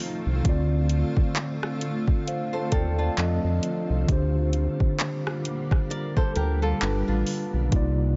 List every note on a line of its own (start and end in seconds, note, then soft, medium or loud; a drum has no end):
0.00 0.41 D#3 medium
0.00 0.40 F3 medium
0.00 4.05 A3 medium
0.00 0.41 C4 medium
0.00 4.05 C4 medium
0.00 8.16 F4 loud
0.00 0.42 A4 medium
0.00 0.46 D#5 medium
0.26 0.42 C2 medium
0.42 1.04 D2 loud
0.42 3.12 D3 medium
0.42 3.15 D3 medium
0.42 3.14 C4 medium
0.42 kick loud
0.42 closed hi-hat medium
0.47 3.15 F4 medium
0.47 2.25 D5 medium
0.89 closed hi-hat medium
1.17 1.24 D#2 soft
1.17 kick medium
1.36 clap loud
1.36 closed hi-hat medium
1.63 cross-stick medium
1.81 closed hi-hat medium
2.07 kick loud
2.27 2.71 C5 medium
2.27 2.70 F5 medium
2.27 closed hi-hat medium
2.53 2.71 A4 medium
2.53 2.71 C5 medium
2.72 3.10 D#2 medium
2.72 2.97 F4 medium
2.72 2.97 A4 medium
2.72 2.98 D5 medium
2.72 2.98 G5 medium
2.72 kick loud
2.72 closed hi-hat medium
2.98 3.42 D4 medium
2.98 3.42 F4 medium
2.98 3.42 D5 medium
2.98 3.42 A5 medium
3.17 3.39 F2 medium
3.17 4.08 F3 medium
3.17 4.09 C4 medium
3.17 4.09 A4 medium
3.17 4.10 D#5 medium
3.17 clap loud
3.17 closed hi-hat medium
3.44 3.60 F2 medium
3.63 closed hi-hat medium
3.90 4.05 C2 loud
4.06 4.68 D2 loud
4.06 6.76 D3 medium
4.06 7.69 D3 medium
4.06 7.69 G3 medium
4.06 6.79 A#3 medium
4.06 6.77 D4 medium
4.06 kick loud
4.06 closed hi-hat medium
4.10 6.78 G4 medium
4.10 6.79 C5 medium
4.53 closed hi-hat medium
4.80 4.88 D2 soft
4.80 kick medium
5.00 clap loud
5.00 closed hi-hat medium
5.27 cross-stick medium
5.45 closed hi-hat medium
5.71 kick loud
5.71 cross-stick medium
5.90 6.16 A#4 medium
5.90 6.15 D5 medium
5.90 closed hi-hat medium
6.17 6.35 A4 medium
6.17 6.35 C5 medium
6.17 kick medium
6.36 6.74 D2 medium
6.36 6.61 G4 medium
6.36 6.61 A#4 medium
6.36 closed hi-hat medium
6.62 6.81 F4 medium
6.62 6.80 A4 medium
6.80 7.03 G1 loud
6.80 7.72 G3 medium
6.80 7.72 D4 medium
6.80 7.73 F4 medium
6.80 7.06 G4 medium
6.80 7.73 B4 medium
6.80 clap loud
6.80 closed hi-hat medium
7.08 7.24 A1 medium
7.08 7.69 D4 medium
7.08 7.69 F4 medium
7.27 open hi-hat medium
7.54 7.69 B1 medium
7.69 8.16 C2 loud
7.69 8.16 C3 medium
7.69 8.16 A#3 medium
7.69 8.16 D#4 medium
7.69 8.16 D5 medium
7.69 kick loud
7.69 closed hi-hat medium
7.74 8.16 F4 medium
7.74 8.16 D5 medium